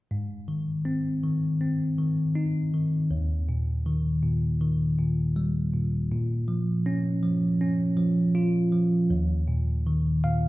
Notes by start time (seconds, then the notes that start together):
0.11 G#2
0.48 D#3
0.85 C4
1.24 D#3
1.61 C4
1.99 D#3
2.35 D#4
2.74 D#3
3.11 D#2
3.49 A#2
3.86 D#3
4.23 A#2
4.61 D#3
4.99 A#2
5.36 G3
5.73 A#2
6.11 A#2
6.48 F3
6.86 C#4
7.23 F3
7.61 C#4
7.97 F3
8.35 F4
8.72 F3
9.10 D#2
9.48 A#2
9.87 D#3
10.24 A#2 F5